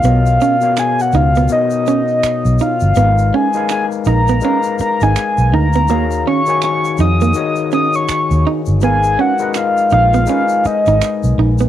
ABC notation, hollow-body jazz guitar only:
X:1
M:4/4
L:1/16
Q:"Swing 16ths" 1/4=82
K:G#dor
V:1 name="Hollow-body jazz guitar"
B, z C z3 D B, z2 C z3 D z | B, z C z3 D B, C z2 D z2 D B, | A, z C z3 D A, z2 C z3 D z | B, z C z3 D B, C z2 D z2 D B, |]